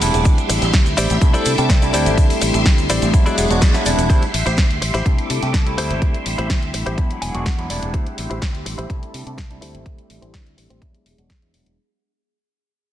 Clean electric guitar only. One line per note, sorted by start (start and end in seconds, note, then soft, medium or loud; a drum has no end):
0.01 muted clean electric guitar stroke soft
0.14 muted clean electric guitar stroke soft
0.25 muted clean electric guitar stroke loud
0.38 muted clean electric guitar stroke soft
0.49 muted clean electric guitar stroke medium
0.62 muted clean electric guitar stroke soft
0.97 1.16 E4 loud
0.97 1.16 G4 medium
0.97 1.16 C5 medium
0.97 1.16 D5 loud
1.34 1.52 E4 loud
1.34 1.52 A4 loud
1.34 1.52 C5 medium
1.34 1.52 D5 loud
1.69 1.82 E4 medium
1.69 1.82 A4 medium
1.69 1.82 C5 medium
1.69 1.82 D5 medium
1.93 2.23 E4 medium
1.93 2.23 G4 medium
1.93 2.23 C5 medium
1.93 2.23 D5 loud
2.30 muted clean electric guitar stroke soft
2.42 muted clean electric guitar stroke medium
2.54 muted clean electric guitar stroke soft
2.90 3.08 E4 medium
2.90 3.08 G4 medium
2.90 3.08 C5 medium
2.90 3.08 D5 medium
3.26 3.37 E4 loud
3.26 3.44 F#4 medium
3.26 3.44 G#4 loud
3.26 3.44 D5 loud
3.38 3.60 F#5 medium
3.61 3.74 E4 medium
3.61 3.74 F#4 medium
3.61 3.74 G#4 medium
3.61 3.74 D5 medium
3.61 3.84 E5 medium
3.86 3.88 D5 medium
3.86 muted clean electric guitar stroke soft
3.98 muted clean electric guitar stroke soft
4.09 4.22 E4 loud
4.09 4.22 G4 loud
4.09 4.22 C5 loud
4.34 muted clean electric guitar stroke soft
4.46 4.64 E4 medium
4.46 4.64 G4 medium
4.46 4.64 C5 medium
4.82 muted clean electric guitar stroke medium
4.94 5.06 E4 loud
4.94 5.06 G4 medium
4.94 5.06 C5 loud
5.30 muted clean electric guitar stroke soft
5.54 muted clean electric guitar stroke medium
5.66 muted clean electric guitar stroke soft
5.78 6.17 E4 medium
5.78 6.17 G4 medium
5.78 6.17 C5 medium
6.25 muted clean electric guitar stroke soft
6.38 6.56 E4 medium
6.38 6.56 G4 medium
6.38 6.56 C5 medium
6.74 muted clean electric guitar stroke medium
6.86 6.98 E4 loud
6.86 6.98 G4 medium
6.86 6.98 C5 loud
7.22 7.44 G#5 medium
7.22 muted clean electric guitar stroke soft
7.46 7.68 F#5 medium
7.46 muted clean electric guitar stroke medium
7.58 muted clean electric guitar stroke soft
7.70 7.92 D5 medium
7.94 8.06 E4 loud
7.94 8.06 G4 loud
7.94 8.06 C5 loud
8.18 muted clean electric guitar stroke soft
8.30 8.48 E4 medium
8.30 8.48 G4 medium
8.30 8.48 C5 medium
8.66 muted clean electric guitar stroke medium
8.78 8.90 E4 loud
8.78 8.90 G4 medium
8.78 8.90 C5 loud
9.14 muted clean electric guitar stroke soft
9.37 muted clean electric guitar stroke medium
9.50 muted clean electric guitar stroke soft
9.61 10.00 E4 medium
9.61 10.00 G4 medium
9.61 10.01 C5 medium
10.09 muted clean electric guitar stroke soft
10.22 10.40 E4 medium
10.22 10.40 G4 medium
10.22 10.40 C5 medium
10.57 muted clean electric guitar stroke medium
10.70 10.82 E4 medium
10.70 10.82 G4 medium
10.70 10.82 C5 loud
11.06 muted clean electric guitar stroke soft
11.30 muted clean electric guitar stroke medium
11.42 muted clean electric guitar stroke soft